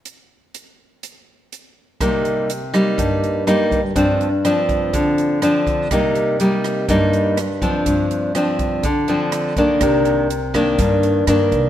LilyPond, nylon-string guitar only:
\new Staff \with { instrumentName = "Nylon-string guitar" } { \time 4/4 \key c \minor \tempo 4 = 123 << { r1 | <g bes ees'>4 r8 <g bes ees'>4. <g bes ees'>8 r8 | <f c' d'>8 r8 <f c' d'>2 <f c' d'>4 | <g bes ees'>4 <g bes ees'>4 <g bes ees'>4 r8 <f c' d'>8~ |
<f c' d'>4 <f c' d'>4 r8 <f c' d'>4 <ees bes d'>8~ | <ees bes d'>4 r8 <ees bes d'>4. <ees bes d'>4 | } \\ { r1 | c2 g,2 | g,2 d2 | c2 g,2 |
g,2 d2 | c2 g,2 | } >> }